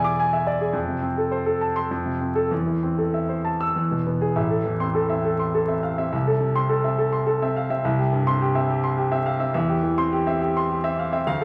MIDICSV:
0, 0, Header, 1, 2, 480
1, 0, Start_track
1, 0, Key_signature, 0, "minor"
1, 0, Tempo, 571973
1, 620, Time_signature, 3, 2, 24, 8
1, 1593, Tempo, 616650
1, 3513, Tempo, 588813
1, 4473, Tempo, 572519
1, 9419, End_track
2, 0, Start_track
2, 0, Title_t, "Grand piano"
2, 0, Program_c, 0, 0
2, 0, Control_c, 0, 64, 127
2, 0, Note_on_c, 0, 40, 69
2, 0, Note_on_c, 0, 47, 50
2, 0, Note_on_c, 0, 64, 55
2, 0, Note_on_c, 0, 68, 52
2, 0, Note_on_c, 0, 74, 62
2, 0, Note_on_c, 0, 76, 61
2, 0, Note_on_c, 0, 80, 64
2, 37, Note_on_c, 0, 86, 82
2, 107, Note_off_c, 0, 80, 0
2, 164, Note_on_c, 0, 80, 66
2, 223, Note_off_c, 0, 86, 0
2, 277, Note_off_c, 0, 76, 0
2, 277, Note_on_c, 0, 76, 60
2, 345, Note_off_c, 0, 80, 0
2, 393, Note_off_c, 0, 74, 0
2, 393, Note_on_c, 0, 74, 56
2, 460, Note_off_c, 0, 76, 0
2, 512, Note_off_c, 0, 68, 0
2, 512, Note_on_c, 0, 68, 60
2, 577, Note_off_c, 0, 74, 0
2, 592, Note_off_c, 0, 40, 0
2, 613, Note_on_c, 0, 41, 71
2, 625, Note_off_c, 0, 68, 0
2, 633, Control_c, 0, 64, 0
2, 640, Note_off_c, 0, 64, 0
2, 642, Note_off_c, 0, 47, 0
2, 742, Note_on_c, 0, 48, 50
2, 790, Control_c, 0, 64, 127
2, 859, Note_on_c, 0, 60, 57
2, 932, Note_off_c, 0, 48, 0
2, 986, Note_on_c, 0, 69, 52
2, 1052, Note_off_c, 0, 60, 0
2, 1104, Note_on_c, 0, 72, 61
2, 1178, Note_off_c, 0, 69, 0
2, 1227, Note_on_c, 0, 69, 57
2, 1299, Note_off_c, 0, 72, 0
2, 1354, Note_on_c, 0, 81, 55
2, 1422, Note_off_c, 0, 69, 0
2, 1477, Note_on_c, 0, 84, 73
2, 1548, Note_off_c, 0, 81, 0
2, 1561, Note_off_c, 0, 41, 0
2, 1597, Note_off_c, 0, 84, 0
2, 1602, Note_on_c, 0, 41, 66
2, 1607, Control_c, 0, 64, 0
2, 1715, Note_on_c, 0, 48, 46
2, 1743, Control_c, 0, 64, 127
2, 1836, Note_on_c, 0, 60, 51
2, 1900, Note_off_c, 0, 48, 0
2, 1948, Note_on_c, 0, 69, 62
2, 2021, Note_off_c, 0, 60, 0
2, 2055, Note_off_c, 0, 41, 0
2, 2066, Note_off_c, 0, 69, 0
2, 2070, Note_on_c, 0, 40, 64
2, 2080, Control_c, 0, 64, 0
2, 2190, Note_on_c, 0, 52, 46
2, 2235, Control_c, 0, 64, 127
2, 2318, Note_on_c, 0, 60, 47
2, 2382, Note_off_c, 0, 52, 0
2, 2436, Note_on_c, 0, 69, 46
2, 2506, Note_off_c, 0, 60, 0
2, 2559, Note_on_c, 0, 76, 52
2, 2626, Note_off_c, 0, 69, 0
2, 2677, Note_on_c, 0, 72, 50
2, 2748, Note_off_c, 0, 76, 0
2, 2798, Note_on_c, 0, 81, 50
2, 2868, Note_off_c, 0, 72, 0
2, 2922, Note_on_c, 0, 88, 67
2, 2989, Note_off_c, 0, 81, 0
2, 3008, Note_off_c, 0, 40, 0
2, 3039, Note_off_c, 0, 88, 0
2, 3039, Note_on_c, 0, 40, 60
2, 3048, Control_c, 0, 64, 0
2, 3161, Note_on_c, 0, 47, 45
2, 3193, Control_c, 0, 64, 127
2, 3281, Note_on_c, 0, 59, 47
2, 3352, Note_off_c, 0, 47, 0
2, 3396, Note_on_c, 0, 68, 63
2, 3469, Note_off_c, 0, 59, 0
2, 3501, Note_off_c, 0, 40, 0
2, 3509, Note_on_c, 0, 33, 66
2, 3509, Note_on_c, 0, 76, 60
2, 3513, Note_off_c, 0, 68, 0
2, 3529, Control_c, 0, 64, 0
2, 3626, Note_on_c, 0, 69, 48
2, 3685, Control_c, 0, 64, 127
2, 3703, Note_off_c, 0, 76, 0
2, 3746, Note_on_c, 0, 40, 52
2, 3822, Note_off_c, 0, 69, 0
2, 3869, Note_on_c, 0, 60, 50
2, 3869, Note_on_c, 0, 84, 71
2, 3942, Note_off_c, 0, 40, 0
2, 3988, Note_on_c, 0, 69, 59
2, 4063, Note_off_c, 0, 60, 0
2, 4063, Note_off_c, 0, 84, 0
2, 4109, Note_on_c, 0, 76, 56
2, 4110, Note_on_c, 0, 60, 51
2, 4183, Note_off_c, 0, 69, 0
2, 4232, Note_on_c, 0, 69, 54
2, 4303, Note_off_c, 0, 76, 0
2, 4304, Note_off_c, 0, 60, 0
2, 4352, Note_on_c, 0, 84, 58
2, 4425, Note_off_c, 0, 69, 0
2, 4476, Note_on_c, 0, 69, 57
2, 4546, Note_off_c, 0, 84, 0
2, 4590, Note_on_c, 0, 76, 57
2, 4592, Note_on_c, 0, 60, 52
2, 4670, Note_off_c, 0, 69, 0
2, 4715, Note_on_c, 0, 77, 50
2, 4786, Note_off_c, 0, 76, 0
2, 4787, Note_off_c, 0, 60, 0
2, 4836, Note_off_c, 0, 77, 0
2, 4841, Note_on_c, 0, 60, 52
2, 4841, Note_on_c, 0, 76, 58
2, 4922, Note_off_c, 0, 33, 0
2, 4949, Note_off_c, 0, 76, 0
2, 4960, Note_off_c, 0, 60, 0
2, 4962, Note_on_c, 0, 76, 59
2, 4963, Note_on_c, 0, 36, 68
2, 4975, Control_c, 0, 64, 0
2, 5085, Note_on_c, 0, 69, 55
2, 5108, Control_c, 0, 64, 127
2, 5153, Note_off_c, 0, 76, 0
2, 5195, Note_on_c, 0, 48, 56
2, 5275, Note_off_c, 0, 69, 0
2, 5320, Note_on_c, 0, 60, 51
2, 5321, Note_on_c, 0, 84, 75
2, 5390, Note_off_c, 0, 48, 0
2, 5437, Note_on_c, 0, 69, 61
2, 5512, Note_off_c, 0, 60, 0
2, 5512, Note_off_c, 0, 84, 0
2, 5563, Note_on_c, 0, 76, 58
2, 5564, Note_on_c, 0, 60, 51
2, 5630, Note_off_c, 0, 69, 0
2, 5681, Note_on_c, 0, 69, 57
2, 5752, Note_off_c, 0, 76, 0
2, 5753, Note_off_c, 0, 60, 0
2, 5800, Note_on_c, 0, 84, 61
2, 5872, Note_off_c, 0, 69, 0
2, 5918, Note_on_c, 0, 69, 59
2, 5991, Note_off_c, 0, 84, 0
2, 6049, Note_on_c, 0, 60, 59
2, 6050, Note_on_c, 0, 76, 59
2, 6110, Note_off_c, 0, 69, 0
2, 6168, Note_on_c, 0, 77, 53
2, 6236, Note_off_c, 0, 60, 0
2, 6237, Note_off_c, 0, 76, 0
2, 6283, Note_off_c, 0, 77, 0
2, 6284, Note_on_c, 0, 60, 58
2, 6285, Note_on_c, 0, 76, 60
2, 6368, Note_off_c, 0, 36, 0
2, 6396, Note_off_c, 0, 76, 0
2, 6402, Note_off_c, 0, 60, 0
2, 6405, Note_on_c, 0, 36, 78
2, 6409, Note_on_c, 0, 76, 64
2, 6413, Control_c, 0, 64, 0
2, 6521, Note_on_c, 0, 67, 62
2, 6530, Control_c, 0, 64, 127
2, 6597, Note_off_c, 0, 76, 0
2, 6639, Note_on_c, 0, 43, 64
2, 6713, Note_off_c, 0, 67, 0
2, 6759, Note_on_c, 0, 84, 76
2, 6763, Note_on_c, 0, 60, 56
2, 6831, Note_off_c, 0, 43, 0
2, 6878, Note_on_c, 0, 67, 67
2, 6950, Note_off_c, 0, 84, 0
2, 6951, Note_off_c, 0, 60, 0
2, 6996, Note_on_c, 0, 76, 64
2, 7000, Note_on_c, 0, 60, 59
2, 7067, Note_off_c, 0, 67, 0
2, 7122, Note_on_c, 0, 67, 66
2, 7185, Note_off_c, 0, 76, 0
2, 7187, Note_off_c, 0, 60, 0
2, 7235, Note_on_c, 0, 84, 65
2, 7307, Note_off_c, 0, 67, 0
2, 7352, Note_on_c, 0, 67, 69
2, 7423, Note_off_c, 0, 84, 0
2, 7470, Note_on_c, 0, 76, 65
2, 7471, Note_on_c, 0, 60, 64
2, 7541, Note_off_c, 0, 67, 0
2, 7590, Note_on_c, 0, 77, 57
2, 7660, Note_off_c, 0, 76, 0
2, 7661, Note_off_c, 0, 60, 0
2, 7706, Note_on_c, 0, 60, 59
2, 7706, Note_on_c, 0, 76, 68
2, 7709, Note_off_c, 0, 77, 0
2, 7797, Note_off_c, 0, 36, 0
2, 7814, Note_off_c, 0, 76, 0
2, 7826, Note_on_c, 0, 76, 72
2, 7827, Note_off_c, 0, 60, 0
2, 7828, Note_on_c, 0, 40, 80
2, 7844, Control_c, 0, 64, 0
2, 7949, Note_on_c, 0, 67, 66
2, 7991, Control_c, 0, 64, 127
2, 8020, Note_off_c, 0, 76, 0
2, 8067, Note_on_c, 0, 52, 62
2, 8143, Note_off_c, 0, 67, 0
2, 8193, Note_on_c, 0, 60, 61
2, 8193, Note_on_c, 0, 84, 83
2, 8263, Note_off_c, 0, 52, 0
2, 8312, Note_on_c, 0, 67, 72
2, 8387, Note_off_c, 0, 60, 0
2, 8387, Note_off_c, 0, 84, 0
2, 8435, Note_on_c, 0, 60, 62
2, 8436, Note_on_c, 0, 76, 70
2, 8507, Note_off_c, 0, 67, 0
2, 8558, Note_on_c, 0, 67, 67
2, 8629, Note_off_c, 0, 60, 0
2, 8629, Note_off_c, 0, 76, 0
2, 8686, Note_on_c, 0, 84, 71
2, 8749, Note_off_c, 0, 67, 0
2, 8804, Note_on_c, 0, 67, 68
2, 8872, Note_off_c, 0, 84, 0
2, 8913, Note_on_c, 0, 60, 65
2, 8915, Note_on_c, 0, 76, 72
2, 8990, Note_off_c, 0, 67, 0
2, 9042, Note_on_c, 0, 77, 58
2, 9105, Note_off_c, 0, 60, 0
2, 9105, Note_off_c, 0, 76, 0
2, 9153, Note_on_c, 0, 60, 61
2, 9156, Note_on_c, 0, 76, 73
2, 9157, Note_off_c, 0, 77, 0
2, 9240, Note_off_c, 0, 40, 0
2, 9273, Note_off_c, 0, 60, 0
2, 9275, Note_off_c, 0, 76, 0
2, 9275, Note_on_c, 0, 38, 81
2, 9275, Note_on_c, 0, 77, 74
2, 9288, Control_c, 0, 64, 0
2, 9404, Control_c, 0, 64, 127
2, 9419, Note_off_c, 0, 38, 0
2, 9419, Note_off_c, 0, 77, 0
2, 9419, End_track
0, 0, End_of_file